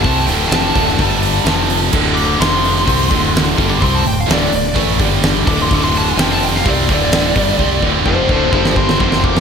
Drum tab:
CC |----------------|x---------------|----------------|----------------|
HH |o-o-o-o-o-o-o-o-|--o-o-o-o-o-o-o-|o-o-o-o-o-o-o-o-|o-o-o-o-o-o-o-o-|
SD |----o--o----o---|----o--o----o---|----o--o----o---|----o--o----o---|
BD |o-----o-o-------|o-------o-o---o-|o-------o-o---o-|o-------o-o---o-|

CC |----------------|
HH |----------------|
SD |---------o-o-o-o|
BD |o-o-o-o-o-o-o-o-|